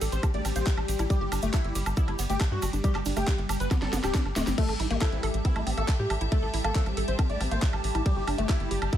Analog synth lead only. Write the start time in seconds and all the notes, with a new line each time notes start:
0.12 C5
0.34 D5
0.56 C5
1.10 G4
1.54 E4
1.97 E4
2.30 G4
2.51 F#4
2.84 G4
3.17 G4
3.60 B4
3.82 A4
4.04 G4
4.58 A4
5.01 E4
5.45 E4
5.78 A4
5.99 G4
6.32 A4
6.64 A4
7.08 C5
7.30 D5
7.51 C5
8.06 G4
8.49 E4
8.93 E4